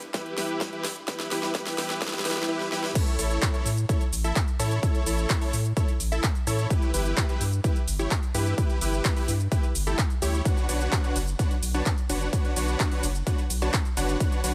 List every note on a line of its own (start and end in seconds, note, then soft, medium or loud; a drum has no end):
0.00 0.11 G2 medium
0.00 closed hi-hat soft
0.14 0.34 E4 medium
0.14 0.34 G4 medium
0.14 0.34 B4 medium
0.14 kick loud
0.14 snare medium
0.14 closed hi-hat medium
0.26 closed hi-hat soft
0.38 0.70 E4 medium
0.38 0.70 G4 medium
0.38 0.70 B4 loud
0.38 snare medium
0.38 open hi-hat loud
0.61 kick loud
0.61 snare medium
0.61 closed hi-hat medium
0.73 0.86 E4 medium
0.73 0.86 G4 medium
0.73 0.86 B4 medium
0.73 closed hi-hat soft
0.84 1.04 G2 medium
0.84 snare medium
0.84 open hi-hat loud
0.96 closed hi-hat soft
1.08 1.28 E4 medium
1.08 1.28 G4 medium
1.08 1.28 B4 medium
1.08 kick loud
1.08 snare loud
1.08 closed hi-hat medium
1.20 snare medium
1.20 closed hi-hat soft
1.31 1.53 E4 medium
1.31 1.53 G4 medium
1.31 1.53 B4 loud
1.31 snare medium
1.31 open hi-hat loud
1.43 snare medium
1.43 closed hi-hat soft
1.55 1.75 E4 medium
1.55 1.75 G4 medium
1.55 1.75 B4 loud
1.55 kick loud
1.55 snare medium
1.55 closed hi-hat medium
1.67 snare medium
1.67 open hi-hat medium
1.78 1.98 G2 medium
1.78 2.00 E4 medium
1.78 2.00 G4 medium
1.78 2.00 B4 loud
1.78 snare loud
1.78 open hi-hat loud
1.90 snare medium
1.90 closed hi-hat soft
2.02 2.22 E4 medium
2.02 2.22 G4 medium
2.02 2.22 B4 medium
2.02 kick loud
2.02 snare loud
2.02 closed hi-hat medium
2.08 snare medium
2.13 snare medium
2.13 closed hi-hat soft
2.19 snare medium
2.25 2.45 E4 medium
2.25 2.45 G4 medium
2.25 2.45 B4 medium
2.25 snare loud
2.25 open hi-hat loud
2.31 snare medium
2.37 snare loud
2.37 closed hi-hat soft
2.43 snare medium
2.49 2.69 E4 medium
2.49 2.68 G4 medium
2.49 2.68 B4 medium
2.60 snare medium
2.72 2.92 E4 medium
2.72 2.92 G4 medium
2.72 2.92 B4 loud
2.72 snare medium
2.84 snare medium
2.95 3.15 E4 medium
2.95 3.15 A4 medium
2.95 3.15 C#5 medium
2.95 kick loud
2.95 closed hi-hat loud
2.95 crash loud
2.95 cabasa soft
3.07 closed hi-hat soft
3.07 cabasa soft
3.19 3.39 A1 loud
3.19 3.51 E4 medium
3.19 3.51 A4 medium
3.19 3.51 C#5 loud
3.19 open hi-hat loud
3.19 cabasa medium
3.31 closed hi-hat soft
3.31 cabasa soft
3.42 kick loud
3.42 clap loud
3.42 closed hi-hat loud
3.42 cabasa soft
3.54 3.67 E4 medium
3.54 3.67 A4 medium
3.54 3.67 C#5 loud
3.54 closed hi-hat soft
3.54 cabasa soft
3.66 3.86 A2 medium
3.66 open hi-hat loud
3.66 cabasa medium
3.77 closed hi-hat soft
3.77 cabasa soft
3.89 4.02 E4 medium
3.89 4.02 A4 medium
3.89 4.02 C#5 loud
3.89 kick loud
3.89 closed hi-hat loud
3.89 cabasa soft
4.01 closed hi-hat soft
4.01 cabasa soft
4.13 4.32 A1 loud
4.13 open hi-hat loud
4.13 cabasa medium
4.24 4.38 E4 medium
4.24 4.38 A4 medium
4.24 4.38 E5 loud
4.24 closed hi-hat soft
4.24 cabasa soft
4.36 kick loud
4.36 clap loud
4.36 closed hi-hat loud
4.36 cabasa soft
4.48 closed hi-hat soft
4.48 cabasa soft
4.59 4.79 A2 medium
4.59 4.79 E4 loud
4.59 4.79 A4 medium
4.59 4.79 C#5 loud
4.59 open hi-hat loud
4.59 cabasa medium
4.71 closed hi-hat soft
4.71 cabasa soft
4.83 5.03 E4 medium
4.83 5.03 A4 medium
4.83 5.03 C#5 medium
4.83 kick loud
4.83 closed hi-hat medium
4.83 cabasa soft
4.95 closed hi-hat soft
4.95 cabasa soft
5.06 5.26 A1 loud
5.06 5.39 E4 medium
5.06 5.39 A4 medium
5.06 5.39 C#5 loud
5.06 open hi-hat loud
5.06 cabasa medium
5.18 cabasa soft
5.30 kick loud
5.30 clap loud
5.30 closed hi-hat loud
5.30 cabasa soft
5.42 5.55 E4 medium
5.42 5.55 A4 medium
5.42 5.55 C#5 medium
5.42 open hi-hat medium
5.42 cabasa soft
5.53 5.73 A2 medium
5.53 open hi-hat loud
5.53 cabasa medium
5.65 closed hi-hat soft
5.65 cabasa soft
5.77 5.90 E4 medium
5.77 5.90 A4 medium
5.77 5.90 C#5 loud
5.77 kick loud
5.77 closed hi-hat loud
5.77 cabasa soft
5.88 closed hi-hat soft
5.88 cabasa soft
6.00 6.20 A1 loud
6.00 open hi-hat loud
6.00 cabasa medium
6.12 6.25 E4 medium
6.12 6.25 A4 medium
6.12 6.25 E5 loud
6.12 closed hi-hat soft
6.12 cabasa soft
6.24 kick loud
6.24 clap loud
6.24 closed hi-hat medium
6.24 cabasa soft
6.35 closed hi-hat soft
6.35 cabasa soft
6.47 6.67 A2 medium
6.47 6.67 E4 medium
6.47 6.67 A4 medium
6.47 6.67 C#5 loud
6.47 open hi-hat loud
6.47 cabasa medium
6.59 closed hi-hat soft
6.59 cabasa soft
6.70 6.90 E4 medium
6.70 6.90 G4 medium
6.70 6.90 B4 loud
6.70 kick loud
6.70 closed hi-hat medium
6.70 cabasa soft
6.82 closed hi-hat soft
6.82 cabasa soft
6.94 7.14 G1 loud
6.94 7.26 E4 loud
6.94 7.26 G4 medium
6.94 7.26 B4 loud
6.94 open hi-hat loud
6.94 cabasa medium
7.06 closed hi-hat soft
7.06 cabasa soft
7.17 kick loud
7.17 clap loud
7.17 closed hi-hat loud
7.17 cabasa soft
7.29 7.42 E4 medium
7.29 7.42 G4 medium
7.29 7.42 B4 medium
7.29 closed hi-hat soft
7.29 cabasa soft
7.41 7.61 G2 medium
7.41 open hi-hat loud
7.41 cabasa medium
7.53 closed hi-hat soft
7.53 cabasa soft
7.64 7.77 E4 medium
7.64 7.77 G4 medium
7.64 7.77 B4 loud
7.64 kick loud
7.64 closed hi-hat medium
7.64 cabasa soft
7.76 closed hi-hat soft
7.76 cabasa soft
7.88 8.08 G1 loud
7.88 open hi-hat loud
7.88 cabasa medium
7.99 8.13 E4 medium
7.99 8.13 G4 medium
7.99 8.13 C#5 loud
7.99 cabasa soft
8.11 kick loud
8.11 clap loud
8.11 closed hi-hat medium
8.11 cabasa soft
8.23 closed hi-hat soft
8.23 cabasa soft
8.34 8.54 G2 medium
8.34 8.54 E4 loud
8.34 8.54 G4 medium
8.34 8.54 B4 loud
8.34 open hi-hat loud
8.34 cabasa medium
8.46 cabasa soft
8.58 8.78 E4 medium
8.58 8.78 G4 medium
8.58 8.78 B4 loud
8.58 kick loud
8.58 closed hi-hat medium
8.58 cabasa soft
8.70 closed hi-hat soft
8.70 cabasa soft
8.81 9.01 G1 loud
8.81 9.14 E4 loud
8.81 9.14 G4 medium
8.81 9.14 B4 loud
8.81 open hi-hat loud
8.81 cabasa medium
8.93 closed hi-hat soft
8.93 cabasa soft
9.05 kick loud
9.05 clap loud
9.05 closed hi-hat medium
9.05 cabasa soft
9.17 9.30 E4 medium
9.17 9.30 G4 medium
9.17 9.30 B4 medium
9.17 open hi-hat medium
9.17 cabasa soft
9.28 9.48 G2 medium
9.28 open hi-hat loud
9.28 cabasa medium
9.40 closed hi-hat soft
9.40 cabasa soft
9.52 9.65 E4 medium
9.52 9.65 G4 medium
9.52 9.65 B4 loud
9.52 kick loud
9.52 closed hi-hat medium
9.52 cabasa soft
9.63 closed hi-hat soft
9.63 cabasa soft
9.75 9.95 G1 loud
9.75 open hi-hat loud
9.75 cabasa medium
9.87 10.00 E4 medium
9.87 10.00 G4 medium
9.87 10.00 A4 medium
9.87 closed hi-hat soft
9.87 cabasa soft
9.99 kick loud
9.99 clap loud
9.99 closed hi-hat medium
9.99 cabasa soft
10.10 closed hi-hat soft
10.10 cabasa soft
10.22 10.42 D2 medium
10.22 10.42 E4 medium
10.22 10.42 G4 medium
10.22 10.42 C#5 medium
10.22 open hi-hat loud
10.22 cabasa medium
10.34 closed hi-hat soft
10.34 cabasa soft
10.45 10.65 D4 medium
10.45 10.65 F#4 medium
10.45 10.65 B4 medium
10.45 10.65 C#5 medium
10.45 10.65 F#5 loud
10.45 kick loud
10.45 closed hi-hat medium
10.45 ride medium
10.45 cabasa soft
10.57 closed hi-hat soft
10.57 cabasa soft
10.69 10.89 B1 loud
10.69 11.01 D4 loud
10.69 11.01 F#4 medium
10.69 11.01 B4 medium
10.69 11.01 C#5 medium
10.69 11.01 F#5 loud
10.69 open hi-hat loud
10.69 ride medium
10.69 cabasa medium
10.81 closed hi-hat soft
10.81 cabasa soft
10.92 kick loud
10.92 clap loud
10.92 closed hi-hat medium
10.92 ride medium
10.92 cabasa soft
11.04 11.17 D4 medium
11.04 11.17 F#4 medium
11.04 11.17 B4 medium
11.04 11.17 C#5 medium
11.04 11.17 F#5 loud
11.04 closed hi-hat soft
11.04 cabasa soft
11.16 11.36 F#1 medium
11.16 open hi-hat loud
11.16 ride medium
11.16 cabasa medium
11.27 closed hi-hat soft
11.27 cabasa soft
11.39 11.52 D4 medium
11.39 11.52 F#4 medium
11.39 11.52 B4 medium
11.39 11.52 C#5 medium
11.39 11.52 F#5 loud
11.39 kick loud
11.39 closed hi-hat medium
11.39 ride medium
11.39 cabasa soft
11.51 closed hi-hat soft
11.51 cabasa soft
11.63 11.83 B1 loud
11.63 open hi-hat loud
11.63 ride medium
11.63 cabasa medium
11.74 11.88 D4 medium
11.74 11.88 F#4 medium
11.74 11.88 B4 medium
11.74 11.88 C#5 medium
11.74 11.88 A5 loud
11.74 closed hi-hat soft
11.74 cabasa soft
11.86 kick loud
11.86 clap loud
11.86 closed hi-hat medium
11.86 ride medium
11.86 cabasa soft
11.98 closed hi-hat soft
11.98 cabasa soft
12.10 12.29 F#1 medium
12.10 12.29 D4 loud
12.10 12.29 F#4 medium
12.10 12.29 B4 medium
12.10 12.29 C#5 medium
12.10 12.29 F#5 loud
12.10 open hi-hat loud
12.10 ride medium
12.10 cabasa medium
12.21 closed hi-hat soft
12.21 cabasa soft
12.33 12.53 D4 medium
12.33 12.53 F#4 medium
12.33 12.53 B4 medium
12.33 12.53 C#5 medium
12.33 12.53 F#5 medium
12.33 kick loud
12.33 closed hi-hat medium
12.33 ride medium
12.33 cabasa soft
12.45 closed hi-hat soft
12.45 cabasa soft
12.56 12.76 B1 loud
12.56 12.89 D4 loud
12.56 12.89 F#4 medium
12.56 12.89 B4 medium
12.56 12.89 C#5 medium
12.56 12.89 F#5 loud
12.56 open hi-hat loud
12.56 ride medium
12.56 cabasa medium
12.68 cabasa soft
12.80 kick loud
12.80 clap loud
12.80 closed hi-hat medium
12.80 ride medium
12.80 cabasa soft
12.92 13.05 D4 medium
12.92 13.05 F#4 medium
12.92 13.05 B4 medium
12.92 13.05 C#5 medium
12.92 13.05 F#5 loud
12.92 open hi-hat medium
12.92 cabasa soft
13.03 13.23 F#1 medium
13.03 open hi-hat loud
13.03 ride medium
13.03 cabasa medium
13.15 closed hi-hat soft
13.15 cabasa soft
13.27 13.40 D4 medium
13.27 13.40 F#4 medium
13.27 13.40 B4 medium
13.27 13.40 C#5 medium
13.27 13.40 F#5 loud
13.27 kick loud
13.27 closed hi-hat loud
13.27 ride medium
13.27 cabasa soft
13.38 closed hi-hat soft
13.38 cabasa soft
13.50 13.70 B1 loud
13.50 open hi-hat loud
13.50 ride medium
13.50 cabasa medium
13.62 13.75 D4 medium
13.62 13.75 F#4 medium
13.62 13.75 B4 medium
13.62 13.75 C#5 medium
13.62 13.75 A5 loud
13.62 closed hi-hat soft
13.62 cabasa soft
13.74 kick loud
13.74 clap loud
13.74 closed hi-hat loud
13.74 ride medium
13.74 cabasa soft
13.85 closed hi-hat soft
13.85 cabasa soft
13.97 14.17 F#1 medium
13.97 14.17 D4 medium
13.97 14.17 F#4 medium
13.97 14.17 B4 medium
13.97 14.17 C#5 medium
13.97 14.17 F#5 loud
13.97 open hi-hat loud
13.97 ride medium
13.97 cabasa medium
14.09 closed hi-hat soft
14.09 cabasa soft
14.20 14.40 D4 medium
14.20 14.40 F#4 medium
14.20 14.40 B4 medium
14.20 14.40 C#5 medium
14.20 14.40 F#5 loud
14.20 kick loud
14.20 closed hi-hat loud
14.20 ride medium
14.20 cabasa soft
14.32 closed hi-hat soft
14.32 cabasa soft
14.44 14.54 B1 loud
14.44 14.54 D4 loud
14.44 14.54 F#4 medium
14.44 14.54 B4 medium
14.44 14.54 C#5 medium
14.44 14.54 F#5 loud
14.44 open hi-hat loud
14.44 ride medium
14.44 cabasa medium